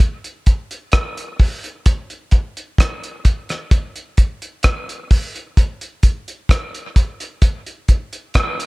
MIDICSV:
0, 0, Header, 1, 2, 480
1, 0, Start_track
1, 0, Tempo, 927357
1, 963, Time_signature, 4, 2, 24, 8
1, 4483, End_track
2, 0, Start_track
2, 0, Title_t, "Drums"
2, 0, Note_on_c, 9, 36, 117
2, 51, Note_off_c, 9, 36, 0
2, 126, Note_on_c, 9, 42, 50
2, 178, Note_off_c, 9, 42, 0
2, 240, Note_on_c, 9, 42, 58
2, 242, Note_on_c, 9, 36, 79
2, 291, Note_off_c, 9, 42, 0
2, 294, Note_off_c, 9, 36, 0
2, 367, Note_on_c, 9, 42, 51
2, 418, Note_off_c, 9, 42, 0
2, 475, Note_on_c, 9, 42, 66
2, 482, Note_on_c, 9, 37, 106
2, 483, Note_on_c, 9, 36, 104
2, 527, Note_off_c, 9, 42, 0
2, 534, Note_off_c, 9, 36, 0
2, 534, Note_off_c, 9, 37, 0
2, 607, Note_on_c, 9, 42, 61
2, 659, Note_off_c, 9, 42, 0
2, 722, Note_on_c, 9, 46, 70
2, 723, Note_on_c, 9, 36, 92
2, 773, Note_off_c, 9, 46, 0
2, 775, Note_off_c, 9, 36, 0
2, 849, Note_on_c, 9, 42, 58
2, 901, Note_off_c, 9, 42, 0
2, 961, Note_on_c, 9, 42, 89
2, 963, Note_on_c, 9, 36, 112
2, 1013, Note_off_c, 9, 42, 0
2, 1015, Note_off_c, 9, 36, 0
2, 1087, Note_on_c, 9, 42, 48
2, 1139, Note_off_c, 9, 42, 0
2, 1198, Note_on_c, 9, 42, 74
2, 1202, Note_on_c, 9, 36, 84
2, 1249, Note_off_c, 9, 42, 0
2, 1254, Note_off_c, 9, 36, 0
2, 1330, Note_on_c, 9, 42, 49
2, 1382, Note_off_c, 9, 42, 0
2, 1441, Note_on_c, 9, 36, 95
2, 1449, Note_on_c, 9, 42, 92
2, 1451, Note_on_c, 9, 37, 92
2, 1493, Note_off_c, 9, 36, 0
2, 1501, Note_off_c, 9, 42, 0
2, 1503, Note_off_c, 9, 37, 0
2, 1571, Note_on_c, 9, 42, 49
2, 1622, Note_off_c, 9, 42, 0
2, 1681, Note_on_c, 9, 42, 76
2, 1682, Note_on_c, 9, 36, 84
2, 1733, Note_off_c, 9, 42, 0
2, 1734, Note_off_c, 9, 36, 0
2, 1807, Note_on_c, 9, 42, 50
2, 1813, Note_on_c, 9, 37, 57
2, 1859, Note_off_c, 9, 42, 0
2, 1865, Note_off_c, 9, 37, 0
2, 1922, Note_on_c, 9, 36, 114
2, 1922, Note_on_c, 9, 42, 87
2, 1973, Note_off_c, 9, 36, 0
2, 1974, Note_off_c, 9, 42, 0
2, 2048, Note_on_c, 9, 42, 50
2, 2099, Note_off_c, 9, 42, 0
2, 2161, Note_on_c, 9, 42, 65
2, 2163, Note_on_c, 9, 36, 87
2, 2212, Note_off_c, 9, 42, 0
2, 2215, Note_off_c, 9, 36, 0
2, 2288, Note_on_c, 9, 42, 49
2, 2339, Note_off_c, 9, 42, 0
2, 2396, Note_on_c, 9, 42, 72
2, 2403, Note_on_c, 9, 37, 103
2, 2404, Note_on_c, 9, 36, 101
2, 2448, Note_off_c, 9, 42, 0
2, 2455, Note_off_c, 9, 37, 0
2, 2456, Note_off_c, 9, 36, 0
2, 2532, Note_on_c, 9, 42, 55
2, 2584, Note_off_c, 9, 42, 0
2, 2643, Note_on_c, 9, 46, 68
2, 2644, Note_on_c, 9, 36, 91
2, 2695, Note_off_c, 9, 46, 0
2, 2696, Note_off_c, 9, 36, 0
2, 2772, Note_on_c, 9, 42, 58
2, 2824, Note_off_c, 9, 42, 0
2, 2884, Note_on_c, 9, 36, 101
2, 2885, Note_on_c, 9, 42, 81
2, 2936, Note_off_c, 9, 36, 0
2, 2936, Note_off_c, 9, 42, 0
2, 3008, Note_on_c, 9, 42, 48
2, 3060, Note_off_c, 9, 42, 0
2, 3120, Note_on_c, 9, 42, 67
2, 3123, Note_on_c, 9, 36, 83
2, 3172, Note_off_c, 9, 42, 0
2, 3174, Note_off_c, 9, 36, 0
2, 3250, Note_on_c, 9, 42, 47
2, 3302, Note_off_c, 9, 42, 0
2, 3360, Note_on_c, 9, 36, 94
2, 3367, Note_on_c, 9, 42, 86
2, 3370, Note_on_c, 9, 37, 87
2, 3412, Note_off_c, 9, 36, 0
2, 3419, Note_off_c, 9, 42, 0
2, 3422, Note_off_c, 9, 37, 0
2, 3491, Note_on_c, 9, 42, 51
2, 3543, Note_off_c, 9, 42, 0
2, 3603, Note_on_c, 9, 36, 86
2, 3603, Note_on_c, 9, 42, 71
2, 3654, Note_off_c, 9, 36, 0
2, 3655, Note_off_c, 9, 42, 0
2, 3728, Note_on_c, 9, 42, 52
2, 3780, Note_off_c, 9, 42, 0
2, 3839, Note_on_c, 9, 42, 90
2, 3840, Note_on_c, 9, 36, 106
2, 3891, Note_off_c, 9, 42, 0
2, 3892, Note_off_c, 9, 36, 0
2, 3967, Note_on_c, 9, 42, 51
2, 4019, Note_off_c, 9, 42, 0
2, 4081, Note_on_c, 9, 42, 63
2, 4082, Note_on_c, 9, 36, 79
2, 4132, Note_off_c, 9, 42, 0
2, 4134, Note_off_c, 9, 36, 0
2, 4207, Note_on_c, 9, 42, 53
2, 4258, Note_off_c, 9, 42, 0
2, 4317, Note_on_c, 9, 42, 66
2, 4323, Note_on_c, 9, 36, 90
2, 4324, Note_on_c, 9, 37, 100
2, 4369, Note_off_c, 9, 42, 0
2, 4375, Note_off_c, 9, 36, 0
2, 4376, Note_off_c, 9, 37, 0
2, 4450, Note_on_c, 9, 42, 53
2, 4483, Note_off_c, 9, 42, 0
2, 4483, End_track
0, 0, End_of_file